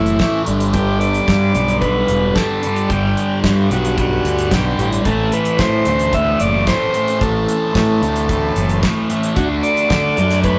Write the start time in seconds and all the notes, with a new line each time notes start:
Already playing: F#1 A2 E3 A3 C4 E4 A4 C5
0.06 closed hi-hat
0.19 A2 E3 A3, kick, snare, closed hi-hat
0.46 G1 G2 D3 G3 B3 D4 B4, closed hi-hat
0.60 closed hi-hat
0.73 G2 D3 G3 G4, kick, closed hi-hat
1.00 D5, closed hi-hat
1.14 closed hi-hat
1.27 G2 D3 G3, kick, snare, closed hi-hat
1.54 B1 D3 G3, closed hi-hat
1.68 closed hi-hat
1.81 G2 D3 B4, kick, closed hi-hat
1.85 G3
2.08 E1, closed hi-hat
2.35 G2 D3 A4, kick, snare, closed hi-hat
2.39 G3
2.62 D3 G3 F#5, closed hi-hat
2.76 closed hi-hat
2.89 G1 G2 D3 G4, kick, closed hi-hat
2.93 G3
3.17 closed hi-hat
3.43 G2 D3 G3, kick, snare, closed hi-hat
3.70 B1 D3 G3 F#4, closed hi-hat
3.85 closed hi-hat
3.96 G2 D3 G3 F#4, kick, closed hi-hat
4.25 D2, closed hi-hat
4.38 closed hi-hat
4.51 B1 G2 D3 G3 G4, kick, snare, closed hi-hat
4.78 A1 D3 G3, closed hi-hat
4.92 closed hi-hat
5.04 A1 A2 E3 A3 C4 E4 A4 C5, kick, closed hi-hat
5.32 B4, closed hi-hat
5.45 closed hi-hat
5.59 A2 E3 A3 C5, kick, snare, closed hi-hat
5.85 D2 E3 A3, closed hi-hat
5.99 closed hi-hat
6.11 A2 E3 A3 E5, kick, closed hi-hat
6.40 F#1 D5, closed hi-hat
6.66 A2 E3 A3 C5, kick, snare, closed hi-hat
6.93 E3 A3, closed hi-hat
7.08 closed hi-hat
7.20 A1 A2 E3 A3 A4, kick, closed hi-hat
7.49 closed hi-hat
7.74 A2 E3 A3, kick, snare, closed hi-hat
8.02 D2 E3 A3, closed hi-hat
8.16 closed hi-hat
8.28 A2 E3 A3, kick, closed hi-hat
8.56 F#1, closed hi-hat
8.69 closed hi-hat
8.82 A2 E3 A3, kick, snare, closed hi-hat
9.09 E3 A3, closed hi-hat
9.23 closed hi-hat
9.36 D2 D3 A3 D4 F#4 A4 D5, kick, closed hi-hat
9.63 D5, closed hi-hat
9.77 closed hi-hat
9.89 D3 A3 D4, kick, snare, closed hi-hat
10.16 F#2 A3 D4, closed hi-hat
10.30 snare, closed hi-hat
10.43 D3 A3 D4 B4, kick, closed hi-hat